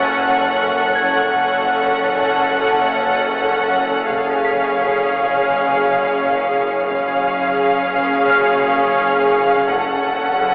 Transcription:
0.00 1.27 F#1 medium
0.00 1.27 F#2 soft
0.00 1.27 C#4 soft
0.00 1.27 A4 soft
0.00 1.27 C#5 soft
0.00 1.27 F#5 soft
0.00 1.28 F#5 soft
0.00 3.72 C#6 soft
0.00 3.71 F#6 soft
0.00 1.97 A6 soft
0.00 impact soft
0.95 3.01 G#6 soft
1.30 1.97 F#1 soft
1.30 4.06 F#1 medium
1.30 4.06 F#2 soft
1.30 4.06 C#4 soft
1.30 4.06 A4 soft
1.30 4.06 C#5 soft
1.30 4.06 F#5 soft
4.10 4.76 F#1 soft
4.10 6.85 F#1 medium
4.10 6.85 F#2 soft
4.10 6.85 C#4 soft
4.10 6.88 G#4 soft
4.10 6.85 C#5 medium
4.10 6.88 F5 soft
4.10 6.85 F5 soft
4.10 taiko soft
4.45 6.50 B6 soft
5.16 taiko soft
6.89 7.55 F#1 soft
6.89 9.65 F#1 medium
6.89 9.65 F#2 soft
6.89 9.64 C#4 soft
6.89 9.64 G#4 medium
6.89 9.64 G#4 soft
6.89 9.64 C#5 medium
6.89 9.64 F5 medium
6.89 9.64 F5 soft
8.30 10.35 F6 soft
9.68 10.34 F#1 soft
9.68 10.55 F#1 medium
9.68 10.55 F#2 medium
9.68 10.55 C#4 soft
9.68 10.55 A4 soft
9.68 10.55 C#5 soft
9.68 10.55 F#5 medium
9.68 taiko soft

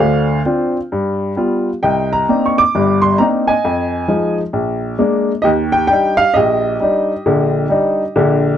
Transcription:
0.00 0.39 D2 medium
0.00 0.39 D3 medium
0.00 0.71 C5 medium
0.00 0.39 F5 medium
0.45 0.76 C4 soft
0.45 0.76 D4 soft
0.45 0.77 F4 medium
0.92 1.31 G2 medium
1.36 1.68 G3 soft
1.36 1.68 B3 soft
1.36 1.69 F4 medium
1.83 2.23 C2 medium
1.83 2.71 D#5 medium
1.83 2.11 G5 medium
2.13 2.47 A#5 medium
2.29 2.60 A#3 soft
2.29 2.60 C4 soft
2.29 2.60 D4 soft
2.29 2.61 D#4 soft
2.46 2.57 C#6 medium
2.58 3.01 D6 loud
2.75 3.14 G1 medium
2.75 3.15 G2 medium
3.02 3.18 C6 medium
3.18 3.51 A#3 soft
3.18 3.51 C4 soft
3.18 3.51 D4 soft
3.18 3.51 D#4 medium
3.18 3.25 A#5 medium
3.47 4.35 D#5 medium
3.47 4.35 G#5 medium
3.65 4.04 F2 medium
4.08 4.40 F3 soft
4.08 4.40 G#3 soft
4.08 4.41 D#4 medium
4.53 4.94 A#1 medium
4.99 5.31 G#3 medium
4.99 5.31 A#3 medium
4.99 5.31 D4 medium
5.42 5.84 D#2 medium
5.42 6.31 G4 medium
5.42 5.49 D#5 medium
5.72 5.86 G5 medium
5.87 6.21 G3 medium
5.87 6.22 D4 soft
5.87 6.22 D#4 medium
5.87 6.16 G5 medium
6.17 6.35 F5 loud
6.34 6.74 A#1 medium
6.34 8.58 G4 medium
6.34 8.58 D#5 medium
6.80 7.11 G3 medium
6.80 7.12 D4 medium
6.80 7.12 D#4 medium
7.26 7.65 A#1 medium
7.26 7.65 D3 medium
7.69 8.01 G3 medium
7.69 8.02 D4 soft
7.69 8.02 D#4 medium
8.16 8.57 A#1 medium
8.16 8.57 D3 medium

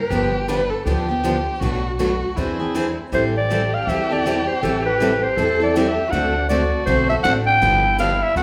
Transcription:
0.00 0.12 A#4 loud
0.00 0.47 B4 medium
0.10 0.71 G1 medium
0.10 0.31 D3 medium
0.10 0.32 F3 medium
0.10 0.32 B3 medium
0.10 0.32 D4 medium
0.10 0.49 G4 medium
0.10 0.32 G4 medium
0.48 0.60 D3 medium
0.48 0.60 F3 medium
0.48 0.60 B3 medium
0.48 0.60 D4 medium
0.48 0.60 G4 medium
0.48 0.71 B4 loud
0.70 0.85 A4 medium
0.86 1.46 D2 medium
0.86 1.07 D3 medium
0.86 1.07 F3 medium
0.86 1.07 B3 medium
0.86 1.07 D4 medium
0.86 1.61 G4 medium
0.86 1.07 G4 medium
1.08 1.23 B3 soft
1.08 1.24 D4 soft
1.08 1.23 G4 medium
1.24 1.35 D3 medium
1.24 1.35 F3 medium
1.24 1.35 B3 medium
1.24 1.35 D4 medium
1.24 1.35 G4 medium
1.60 2.22 B1 medium
1.60 1.82 B2 medium
1.60 1.83 F#3 medium
1.60 1.83 A3 medium
1.60 1.83 D4 medium
1.60 1.97 F#4 medium
1.60 1.83 F#4 medium
1.60 1.83 B4 medium
1.98 2.10 B2 medium
1.98 2.10 F#3 medium
1.98 2.10 A3 medium
1.98 2.11 D4 medium
1.98 2.38 F#4 medium
1.98 2.11 F#4 medium
1.98 2.11 B4 medium
2.36 2.97 E2 medium
2.36 2.58 E3 medium
2.36 2.58 C4 medium
2.36 2.58 D4 medium
2.36 2.97 E4 medium
2.36 2.58 G#4 medium
2.36 2.58 C5 medium
2.60 2.74 C4 soft
2.60 2.74 D4 soft
2.60 2.74 G#4 soft
2.74 2.85 E3 medium
2.74 2.86 C4 medium
2.74 2.86 D4 medium
2.74 2.86 G#4 medium
2.74 2.86 C5 medium
3.12 3.72 A1 medium
3.12 3.33 E3 medium
3.12 3.33 G3 medium
3.12 3.33 C4 medium
3.12 3.33 E4 medium
3.12 5.38 G4 medium
3.12 3.34 A4 medium
3.12 3.24 C5 medium
3.37 3.76 D5 medium
3.50 3.61 E3 medium
3.50 3.61 G3 medium
3.50 3.61 C4 medium
3.50 3.61 E4 medium
3.50 3.62 A4 medium
3.74 3.91 F5 medium
3.87 4.47 E2 medium
3.87 4.09 E3 medium
3.87 4.09 G3 medium
3.87 4.09 C4 medium
3.87 4.09 E4 medium
3.87 4.09 A4 medium
3.87 4.14 E5 medium
4.10 4.25 C4 soft
4.10 4.25 E4 soft
4.10 4.25 A4 soft
4.10 4.49 D5 medium
4.25 4.36 E3 medium
4.25 4.36 G3 medium
4.25 4.37 C4 medium
4.25 4.37 E4 medium
4.25 4.37 A4 medium
4.48 4.62 C5 medium
4.63 5.23 A1 medium
4.63 4.83 E3 medium
4.63 4.83 G3 medium
4.63 4.84 C4 medium
4.63 4.84 E4 medium
4.63 4.84 A4 medium
4.85 5.24 B4 medium
5.00 5.11 E3 medium
5.00 5.11 G3 medium
5.00 5.11 C4 medium
5.00 5.12 E4 medium
5.00 5.12 A4 medium
5.22 5.62 C5 medium
5.37 5.97 E2 medium
5.37 5.58 E3 medium
5.37 5.58 G3 medium
5.37 5.59 C4 medium
5.37 5.59 E4 medium
5.37 5.76 A4 medium
5.37 5.59 A4 medium
5.60 5.75 C4 soft
5.60 5.75 E4 soft
5.60 5.74 A4 medium
5.60 5.89 D5 medium
5.74 5.87 E3 medium
5.74 5.87 G3 medium
5.74 5.87 C4 medium
5.74 5.87 E4 medium
5.74 6.13 G4 medium
5.74 5.87 A4 medium
5.88 6.13 E5 medium
6.11 6.72 D2 medium
6.11 6.34 D3 medium
6.11 6.34 A3 medium
6.11 6.34 C4 medium
6.11 6.50 D4 medium
6.11 6.34 F#4 medium
6.11 6.34 A4 medium
6.11 6.48 F#5 medium
6.49 6.61 D3 medium
6.49 6.61 A3 medium
6.49 6.61 C4 medium
6.49 7.26 F#4 medium
6.49 6.62 F#4 medium
6.49 6.62 A4 medium
6.49 6.84 D5 medium
6.86 7.19 B1 medium
6.86 7.08 D3 medium
6.86 7.08 A3 medium
6.86 7.08 C4 medium
6.86 7.08 F#4 medium
6.86 7.08 A4 medium
6.86 7.07 C5 medium
7.09 7.23 C4 soft
7.09 7.24 F#4 soft
7.09 7.24 A4 medium
7.09 7.16 E5 medium
7.23 7.56 A1 medium
7.23 7.35 D3 medium
7.23 7.35 A3 medium
7.23 7.35 C4 medium
7.23 7.63 D4 medium
7.23 7.36 F#4 medium
7.23 7.36 A4 medium
7.23 7.34 F#5 medium
7.46 7.95 G5 loud
7.61 8.21 G1 medium
7.61 7.82 D3 medium
7.61 7.82 F3 medium
7.61 7.83 B3 medium
7.61 7.83 D4 medium
7.61 8.38 E4 medium
7.61 7.83 G4 medium
7.99 8.10 D3 medium
7.99 8.10 F3 medium
7.99 8.10 B3 medium
7.99 8.11 D4 medium
7.99 8.11 G4 medium
7.99 8.24 F5 medium
8.23 8.37 E5 medium
8.36 8.43 D2 medium
8.36 8.43 D3 medium
8.36 8.43 A3 medium
8.36 8.43 C4 medium
8.36 8.43 F#4 medium
8.36 8.43 A4 medium
8.36 8.43 F#5 medium

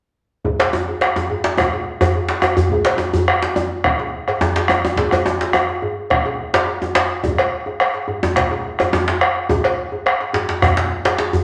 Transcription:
0.45 bombo low medium
0.45 djembe tone medium
0.45 djembe bass medium
0.60 bombo rim medium
0.60 cowbell medium
0.60 djembe slap medium
0.60 djembe slap soft
0.73 djembe tone medium
0.88 djembe tone soft
1.01 bombo rim medium
1.01 cowbell soft
1.01 djembe slap medium
1.16 djembe slap medium
1.16 djembe tone medium
1.30 bombo rim soft
1.30 djembe tone medium
1.30 djembe bass medium
1.44 djembe slap medium
1.58 bombo rim medium
1.58 bombo low medium
1.58 cowbell soft
1.58 djembe tone medium
1.73 djembe slap medium
1.73 djembe tone medium
2.01 bombo rim medium
2.01 cowbell soft
2.01 djembe bass medium
2.14 bombo rim soft
2.14 djembe tone medium
2.29 bombo rim soft
2.29 djembe slap medium
2.30 djembe slap soft
2.42 bombo rim medium
2.42 cowbell soft
2.42 djembe tone medium
2.57 djembe bass medium
2.70 bombo low medium
2.70 djembe tone medium
2.70 djembe bass medium
2.85 bombo rim medium
2.85 cowbell medium
2.85 djembe slap medium
2.87 djembe slap medium
2.98 djembe tone medium
3.13 djembe tone medium
3.13 djembe bass medium
3.28 bombo rim loud
3.28 cowbell soft
3.42 djembe slap medium
3.56 djembe tone medium
3.84 bombo rim medium
3.84 bombo low medium
3.84 cowbell soft
3.84 djembe slap soft
3.99 djembe slap medium
3.99 djembe tone medium
4.28 bombo rim medium
4.28 cowbell soft
4.28 djembe bass medium
4.41 djembe tone loud
4.41 djembe tone medium
4.56 bombo rim soft
4.56 djembe slap medium
4.56 djembe slap soft
4.68 bombo rim medium
4.68 cowbell soft
4.68 djembe tone medium
4.85 djembe tone medium
4.96 bombo low medium
4.96 djembe slap medium
4.96 djembe tone medium
4.96 djembe bass medium
5.11 bombo rim medium
5.11 cowbell medium
5.11 djembe tone medium
5.26 djembe tone medium
5.41 djembe slap medium
5.41 djembe tone medium
5.53 bombo rim medium
5.53 cowbell soft
5.53 djembe tone medium
5.69 djembe slap soft
5.82 bombo rim soft
5.82 djembe tone medium
5.82 djembe bass medium
6.10 bombo rim medium
6.10 bombo low medium
6.10 cowbell soft
6.26 djembe slap medium
6.26 djembe tone soft
6.53 bombo rim medium
6.53 cowbell medium
6.53 djembe slap medium
6.53 djembe bass medium
6.67 bombo rim soft
6.67 djembe tone medium
6.82 bombo rim soft
6.82 djembe slap soft
6.82 djembe tone medium
6.95 bombo rim medium
6.95 cowbell soft
6.95 djembe slap medium
7.23 bombo rim soft
7.23 bombo low medium
7.23 djembe tone medium
7.23 djembe bass medium
7.38 bombo rim medium
7.38 cowbell medium
7.38 djembe slap soft
7.66 bombo rim soft
7.66 djembe slap soft
7.66 djembe tone soft
7.80 bombo rim medium
7.80 cowbell soft
7.94 bombo rim soft
7.94 djembe slap medium
8.08 bombo rim soft
8.08 djembe slap soft
8.08 djembe tone medium
8.08 djembe bass medium
8.23 djembe tone medium
8.36 bombo rim medium
8.36 bombo low medium
8.36 cowbell soft
8.36 djembe slap medium
8.51 djembe slap medium
8.51 djembe tone medium
8.65 djembe slap soft
8.79 bombo rim medium
8.79 cowbell medium
8.79 djembe slap soft
8.79 djembe tone medium
8.79 djembe bass medium
8.93 djembe tone loud
8.93 djembe tone medium
9.08 djembe slap medium
9.21 bombo rim medium
9.21 cowbell soft
9.21 djembe slap soft
9.37 bombo rim soft
9.37 djembe slap soft
9.49 bombo low medium
9.49 djembe tone medium
9.49 djembe bass medium
9.64 bombo rim medium
9.64 cowbell medium
9.64 djembe slap medium
9.92 djembe tone medium
10.06 bombo rim loud
10.06 cowbell soft
10.21 djembe slap medium
10.33 bombo rim soft
10.33 djembe slap medium
10.33 djembe tone medium
10.33 djembe bass medium
10.49 djembe slap medium
10.62 bombo rim medium
10.62 bombo low loud
10.62 cowbell soft
10.62 djembe slap soft
10.62 djembe bass medium
10.77 djembe slap medium
10.77 djembe tone medium
11.05 bombo rim medium
11.05 cowbell soft
11.05 djembe slap medium
11.05 djembe bass medium
11.19 djembe slap medium
11.19 djembe tone medium
11.33 bombo rim soft
11.33 djembe slap soft
11.33 djembe bass medium

